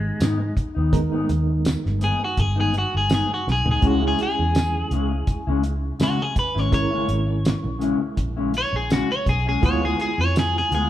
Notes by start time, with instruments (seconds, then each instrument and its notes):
Already playing: fingered electric bass G#1, clean electric guitar G#3, reed electric piano G#3 B3 D#4 G4
0.19 clean electric guitar G#2 D#3 B3 D#4, fingered electric bass G#2, snare, closed hi-hat, tambourine
0.40 muted clean electric guitar stroke
0.56 muted clean electric guitar stroke, kick, closed hi-hat
0.75 fingered electric bass D#2, clean electric guitar D#3 B3 D#4
0.92 reed electric piano G#3 B3 D#4 A#4, kick, closed hi-hat
1.12 clean electric guitar G#2 D#3 B3 D#4
1.29 fingered electric bass D#2, muted clean electric guitar stroke, closed hi-hat
1.48 muted clean electric guitar stroke
1.65 snare, closed hi-hat, tambourine
1.84 fingered electric bass G1, muted clean electric guitar stroke, snare
1.99 clean electric guitar G#2 D#3 B3 D#4, closed hi-hat
2.04 clean electric guitar G#4
2.21 clean electric guitar F#4, muted clean electric guitar stroke
2.37 fingered electric bass G1, clean electric guitar G#4, muted clean electric guitar stroke, kick, closed hi-hat
2.56 clean electric guitar G#2 D#3 B3 D#4
2.60 clean electric guitar G#4
2.74 muted clean electric guitar stroke, closed hi-hat
2.78 clean electric guitar F#4
2.94 fingered electric bass G1, clean electric guitar G#4
3.09 clean electric guitar G#2 D#3 B3 D#4, snare, closed hi-hat, tambourine
3.14 clean electric guitar G#4
3.28 muted clean electric guitar stroke
3.34 clean electric guitar F#4
3.46 fingered electric bass B1, muted clean electric guitar stroke, snare
3.52 clean electric guitar G#4
3.64 fingered electric bass C#2, clean electric guitar D#3 B3 D#4, floor tom
3.71 clean electric guitar G#4
3.81 fingered electric bass C#2, clean electric guitar C#3 G#3 C#4 E4, reed electric piano G#3 C#4 E4 G#4, kick, closed hi-hat
3.87 clean electric guitar F#4
4.01 clean electric guitar C#3 G#3 C#4 E4
4.08 clean electric guitar G#4
4.18 muted clean electric guitar stroke, closed hi-hat
4.23 clean electric guitar G#4
4.38 fingered electric bass E2, muted clean electric guitar stroke
4.55 snare, closed hi-hat, tambourine
4.76 muted clean electric guitar stroke
4.91 fingered electric bass C#2, clean electric guitar C#3 G#3 C#4 E4, closed hi-hat
5.11 muted clean electric guitar stroke
5.27 muted clean electric guitar stroke, kick, closed hi-hat
5.47 fingered electric bass C#2, clean electric guitar C#3 G#3 C#4 E4
5.63 muted clean electric guitar stroke, closed hi-hat
5.99 clean electric guitar C#3 G#3 C#4 E4, fingered electric bass C#3, snare, closed hi-hat, tambourine
6.03 clean electric guitar F#4
6.19 clean electric guitar G#4, muted clean electric guitar stroke
6.35 muted clean electric guitar stroke, kick, closed hi-hat
6.39 clean electric guitar B4
6.55 fingered electric bass G#1, clean electric guitar G#3 C#4 E4, snare
6.59 clean electric guitar C#5
6.72 reed electric piano G#3 C#4 E4 A#4, clean electric guitar C#5, kick, closed hi-hat
6.91 clean electric guitar C#3 G#3 C#4 E4
7.07 fingered electric bass G#1, muted clean electric guitar stroke, closed hi-hat
7.27 muted clean electric guitar stroke
7.45 snare, closed hi-hat, tambourine
7.63 fingered electric bass A#1, muted clean electric guitar stroke
7.79 clean electric guitar C#3 G#3 C#4 E4, closed hi-hat
8.00 muted clean electric guitar stroke
8.16 fingered electric bass A#1, muted clean electric guitar stroke, kick, closed hi-hat
8.36 clean electric guitar C#3 G#3 C#4 E4
8.54 muted clean electric guitar stroke, closed hi-hat
8.58 clean electric guitar C#5
8.73 fingered electric bass A#1, clean electric guitar G#4
8.89 clean electric guitar C#3 G#3 C#4 E4 F#4, snare, closed hi-hat, tambourine
9.10 clean electric guitar C#5, muted clean electric guitar stroke
9.26 fingered electric bass B1, clean electric guitar G#4, muted clean electric guitar stroke, kick, closed hi-hat
9.45 clean electric guitar G#3 C#4 E4 G#4
9.62 fingered electric bass D2, clean electric guitar D3 G#3 B3 F4, reed electric piano G#3 B3 E4 F4, kick, closed hi-hat
9.66 clean electric guitar C#5
9.82 clean electric guitar D3 G#3 B3 F4 G#4
9.98 clean electric guitar G#4, muted clean electric guitar stroke, closed hi-hat
10.18 fingered electric bass F2, clean electric guitar C#5, muted clean electric guitar stroke
10.36 clean electric guitar G#4, snare, closed hi-hat, tambourine
10.54 muted clean electric guitar stroke, snare
10.58 clean electric guitar G#4
10.71 fingered electric bass D2, clean electric guitar D3 G#3 B3 F4, closed hi-hat
10.75 clean electric guitar G#4